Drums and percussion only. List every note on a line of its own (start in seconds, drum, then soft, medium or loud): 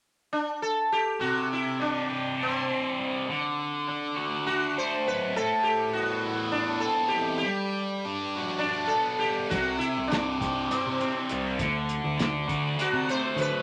9.51 kick loud
9.51 closed hi-hat medium
9.81 closed hi-hat medium
10.11 snare loud
10.11 closed hi-hat medium
10.41 kick medium
10.41 snare soft
10.41 closed hi-hat medium
10.71 closed hi-hat medium
11.00 closed hi-hat medium
11.29 closed hi-hat medium
11.59 kick medium
11.59 closed hi-hat medium
11.89 closed hi-hat medium
12.19 snare loud
12.19 closed hi-hat medium
12.48 kick medium
12.48 closed hi-hat medium
12.79 closed hi-hat medium
13.09 closed hi-hat medium
13.38 closed hi-hat medium